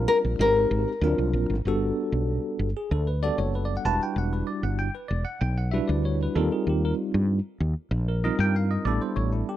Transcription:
Already playing: G3 C4 D4 F4 A#4
0.08 A#4
0.25 A#1
0.39 G#1 G#3 C4 D#4 G4 A#4
0.71 G#1
1.01 D2 F#3 C4 D4 F4 A#4
1.18 C2
1.33 A#1
1.50 G#1
1.65 G1 G3 B3 D4 F#4 A4
2.12 B1
2.59 G1
2.77 G#4
2.91 D2 A4
3.07 B4
3.23 G3 B3 D4 F#4 A4 D5
3.38 F#1 C#5
3.55 B4
3.65 D5
3.77 F#5
3.85 E1 G3 D4 E4 F#4 B4 A5
4.03 G5
4.16 E1 F#5
4.33 B4
4.47 D5
4.63 G1 F#5
4.79 G5
4.95 B4
5.08 E1 D5
5.25 F#5
5.41 B1 G5
5.58 F#5
5.71 G3 D4 E4 F#4 B4 E5
5.88 D2 D5
6.05 C#5
6.23 B4
6.35 D#2 G3 C4 D#4 F4 A4 A#4
6.52 G#4
6.67 D#2 G4
6.85 A#4
7.14 G2
7.60 D#2
7.91 A#1
8.08 A#4
8.24 G3 C4 D#4 F4 A#4 D#5
8.39 G2 G5
8.56 F5
8.71 D#5
8.85 A1 G3 B3 D4 E4 A4 D5
9.02 C5
9.16 A1 C#5
9.32 E4
9.49 G4

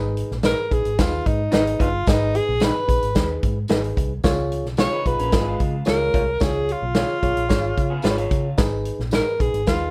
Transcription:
Already playing: G#1 G#2 D#4 G#4 B4
0.17 closed hi-hat
0.31 A#1, snare
0.43 D#4 G#4 A#4 B4 D#5, snare, closed hi-hat, tambourine
0.71 A#1 D#4 G#4 B4, kick, closed hi-hat
0.85 G#1, closed hi-hat
0.98 D#2 D#4 F4 G#4 B4, kick, snare, closed hi-hat, tambourine
1.26 G#2 D#4, kick, closed hi-hat
1.52 G#1 D#4 G#4 B4 D#5, snare, closed hi-hat, tambourine
1.67 closed hi-hat
1.80 G1 D#4 F4 G#4 B4 D#5, kick, closed hi-hat
2.07 G#1 G#2 D#4 G#4 A#4, kick, snare, closed hi-hat, tambourine
2.14 B4
2.35 G#4, closed hi-hat
2.49 A#1
2.60 D#4 G#4 B4 D#5, snare, closed hi-hat, tambourine
2.88 A#1 D#4 G#4 B4, kick, closed hi-hat
3.02 G#1, closed hi-hat
3.15 D#2 D#4 G#4 B4, kick, snare, closed hi-hat, tambourine
3.43 G#2, kick, closed hi-hat
3.68 G#1 D#4 G#4 B4 D#5, snare, closed hi-hat, tambourine
3.84 closed hi-hat
3.97 C2, kick, closed hi-hat
4.24 C#2 C#3 F4 G#4 C#5, kick, snare, closed hi-hat, tambourine
4.52 closed hi-hat
4.65 B1, snare
4.77 F4 G#4 C#5 F5, snare, closed hi-hat, tambourine
4.92 D#4 B4
5.06 B1 F4 G#4 B4, kick, closed hi-hat
5.19 A#1 C#4 A#4, closed hi-hat
5.32 G#1 B3 F4 G#4 D#5, kick, snare, closed hi-hat, tambourine
5.46 G#3 F4
5.60 C#3, kick, closed hi-hat
5.85 C#2 F4 G#4 C#5 F5, snare, closed hi-hat, tambourine
5.89 A#4
6.14 C2 F4 G#4 C#5 F5, kick, closed hi-hat
6.40 C#2 C#3 F4 G#4 C#5, kick, snare, closed hi-hat, tambourine
6.69 F4, closed hi-hat
6.82 B1
6.95 F4 G#4 C#5 F5, snare, closed hi-hat, tambourine
7.23 B1 F4 G#4 C#5, kick, closed hi-hat
7.37 A#1, closed hi-hat
7.49 G#1 F4 G#4 C#5, kick, snare, closed hi-hat, tambourine
7.77 C#3, kick, closed hi-hat
7.90 B3 G#4
8.02 G#1 D#4 F4 G#4 B4 C#5 F5, snare, closed hi-hat, tambourine
8.10 C#5
8.18 F4 C#5, closed hi-hat
8.31 C#3, kick, closed hi-hat
8.58 G#1 G#2 D#4 G#4 B4, kick, snare, closed hi-hat, tambourine
8.85 closed hi-hat
8.99 A#1, snare
9.11 D#4 G#4 A#4 B4 D#5, snare, closed hi-hat, tambourine
9.40 A#1 D#4 G#4 B4, kick, closed hi-hat
9.54 G#1, closed hi-hat
9.67 D#2 D#4 F4 G#4 B4, kick, snare, closed hi-hat, tambourine

